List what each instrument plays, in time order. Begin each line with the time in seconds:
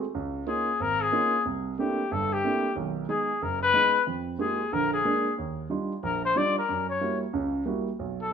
0.15 grand piano C#2
0.47 grand piano A#3 C#4 D#4 F4, trumpet G#4
0.80 grand piano G#1, trumpet A#4
1.01 trumpet G#4
1.12 grand piano A#3 C#4 D#4 F4
1.45 grand piano C2
1.78 grand piano A3 A#3 C4 D4 E4, trumpet G4
2.11 grand piano G1 G2, trumpet A4
2.33 trumpet G4
2.44 grand piano A3 A#3 C4 D4 E4
2.76 grand piano B1 D#3
3.09 grand piano G#3 B3 D#4, trumpet G#4
3.42 grand piano F#1, trumpet A#4
3.62 trumpet B4
3.74 grand piano G#3 B3 D#4
4.07 grand piano F2
4.39 grand piano G#3 A#3 D#4 F4 G4, trumpet G#4
4.72 grand piano A#1 D3, trumpet A#4
4.93 trumpet G#4
5.05 grand piano G#3 A#3 D4
5.38 grand piano D#2
5.70 grand piano G3 D4 D#4 F4
6.03 grand piano A#1, trumpet A#4
6.25 trumpet C5
6.36 grand piano G3 D4 D#4 F4, trumpet D5
6.59 trumpet A#4
6.69 grand piano F#2
6.90 trumpet C#5
7.01 grand piano G3 A#3 E4 F#4
7.33 grand piano C#2 C#3
7.66 grand piano G3 A#3 E4 F#4
7.99 grand piano B1
8.22 trumpet A4